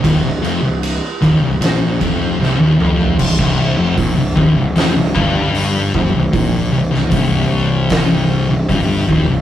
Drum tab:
CC |----------------|x---------------|----------------|
RD |x-x-x-x-x-x-----|----------------|----------------|
HH |----------------|----o---o---o---|o---o---o---o---|
SD |--------o---o---|--------o-------|---o----o-------|
T2 |--------------o-|----------------|----------------|
FT |---------------o|----------------|----------------|
BD |o-----o---o-----|oo--o-o---o---o-|o---o---o---o-o-|